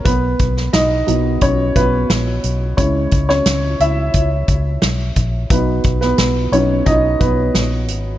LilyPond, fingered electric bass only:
\new Staff \with { instrumentName = "Fingered electric bass" } { \clef bass \time 4/4 \key b \major \tempo 4 = 88 b,,8 b,,8 b,,8 b,,8 b,,8 b,,8 ais,,8 b,,8 | cis,8 cis,8 cis,8 cis,8 cis,8 cis,8 b,,8 ais,,8 | b,,8 b,,8 b,,8 b,,8 b,,8 b,,8 ais,,8 gis,,8 | }